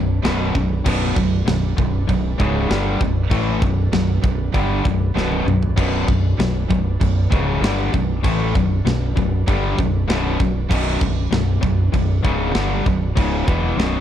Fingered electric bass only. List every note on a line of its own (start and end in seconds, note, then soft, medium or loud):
0.00 0.22 B0 medium
0.25 0.53 B0 loud
0.55 0.83 B0 medium
0.86 1.14 B0 loud
1.16 1.45 B0 medium
1.48 1.76 B0 medium
1.78 2.06 B0 medium
2.09 2.37 B0 medium
2.40 2.68 C#1 loud
2.70 2.99 G1 loud
3.01 3.29 B0 medium
3.31 3.60 A1 loud
3.62 3.90 B0 medium
3.93 4.21 B0 medium
4.23 4.52 B0 medium
4.54 4.83 G1 medium
4.86 5.14 B0 medium
5.15 5.44 B0 medium
5.45 5.74 B0 medium
5.77 6.06 B0 medium
6.08 6.36 B0 medium
6.39 6.67 B0 medium
6.70 6.99 B0 medium
7.01 7.29 B0 medium
7.32 7.60 C#1 loud
7.61 7.90 G1 loud
7.94 8.22 B0 medium
8.24 8.53 A1 loud
8.55 8.83 B0 medium
8.85 9.14 B0 medium
9.17 9.45 B0 medium
9.48 9.76 G1 medium
9.79 10.07 B0 medium
10.08 10.37 B0 medium
10.40 10.68 B0 medium
10.71 10.99 B0 medium
11.01 11.30 B0 medium
11.32 11.61 B0 medium
11.63 11.92 B0 medium
11.93 12.22 B0 medium
12.25 12.53 C#1 loud
12.55 12.84 G1 medium
12.86 13.15 B0 medium
13.17 13.46 C#1 medium
13.48 13.76 E1 medium
13.77 14.00 B0 loud